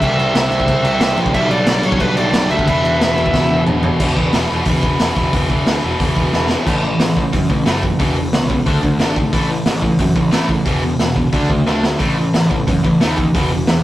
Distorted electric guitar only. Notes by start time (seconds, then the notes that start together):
0.01 C3 G3 C4
1.33 G2 D3
1.37 G3
2.66 E2 B2 E3
4.00 E2 B2 E3
4.16 E2 B2 E3
4.33 E2 B2 E3
4.50 E2 B2 E3
4.66 E2 B2 E3
4.84 E2 B2 E3
5.00 E2 B2 E3
5.16 E2 B2 E3
5.33 E2 B2 E3
5.49 E2 B2 E3
5.67 E2 B2 E3
5.82 E2 B2 E3
5.99 E2 B2 E3
6.15 E2 B2 E3
6.32 E2 B2 E3
6.48 E2 B2 E3
6.65 A2 E3 A3
6.83 A2 E3
7.00 A2 E3
7.17 A2 E3
7.33 A2 E3
7.50 A2 E3
7.66 A2 E3 A3
7.84 A2 E3
7.99 E2 B2 E3
8.17 E2 B2
8.33 E2 B2
8.50 E2 B2
8.66 D3 A3 D4
8.82 D3 A3
8.99 D3 A3 D4
9.16 D3 A3
9.33 A2 E3 A3
9.49 A2 E3
9.66 A2 E3
9.82 A2 E3
10.00 A2 E3
10.16 A2 E3
10.32 A2 E3 A3
10.49 A2 E3
10.66 E2 B2 E3
10.83 E2 B2
11.00 E2 B2
11.16 E2 B2
11.33 D3 A3 D4
11.50 D3 A3
11.67 D3 A3 D4
11.83 D3 A3
11.99 A2 E3 A3
12.17 A2 E3
12.34 A2 E3
12.50 A2 E3
12.67 A2 E3
12.84 A2 E3
13.01 A2 E3 A3
13.18 A2 E3
13.35 E2 B2 E3
13.51 E2 B2
13.68 E2 B2